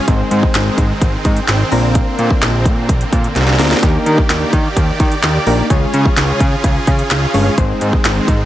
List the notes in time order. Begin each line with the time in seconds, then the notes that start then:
0.07 G#1 D#3 G#3 C4 D#4 G#4 C5, kick, closed hi-hat
0.31 G#2, closed hi-hat
0.43 kick
0.55 G#1, snare, clap, closed hi-hat
0.78 G#2, kick, closed hi-hat
1.01 G#1, kick, closed hi-hat
1.25 G#2, kick, closed hi-hat
1.37 closed hi-hat
1.48 G#1, snare, clap, closed hi-hat
1.71 A#1 D3 A#3 C4 D4 F4 A#4, open hi-hat
1.95 kick, closed hi-hat
2.19 A#2, closed hi-hat
2.31 kick
2.42 A#1, snare, clap, closed hi-hat
2.65 A#2, kick, closed hi-hat
2.89 A#1, kick, closed hi-hat
3.01 closed hi-hat
3.13 A#2, kick, closed hi-hat
3.24 closed hi-hat
3.36 C2, snare, closed hi-hat
3.42 snare
3.48 snare
3.54 snare
3.59 D2 A#3 C4 D4 F4 A#4, snare, open hi-hat
3.65 snare
3.71 snare
3.77 snare
3.82 D#2 D#3 A#3 D4 D#4 G4 A#4 D5, kick, closed hi-hat
4.06 D#3, closed hi-hat
4.18 kick
4.29 D#2, snare, clap, closed hi-hat
4.53 D#3, kick, closed hi-hat
4.77 D#2, kick, closed hi-hat
5.00 D#3, kick, closed hi-hat
5.12 closed hi-hat
5.23 D#2, snare, clap, closed hi-hat
5.46 A#1 A#3 D4 D#4 G4 A#4, open hi-hat
5.70 C#2 C#3 G#3 C#4 F4 G#4 C#5, kick, closed hi-hat
5.94 C#3, closed hi-hat
6.06 kick
6.17 C#2, snare, clap, closed hi-hat
6.40 C#3, kick, closed hi-hat
6.64 C#2, kick, closed hi-hat
6.87 C#3, kick, closed hi-hat
6.99 closed hi-hat
7.11 C#2, snare, clap, closed hi-hat
7.34 G1 G#3 C#4 F4 G#4 C#5, open hi-hat
7.57 G#1 G#3 C4 D#4 G#4 C5, kick, closed hi-hat
7.81 G#2, closed hi-hat
7.93 kick
8.05 G#1, snare, clap, closed hi-hat
8.28 G#2, kick, closed hi-hat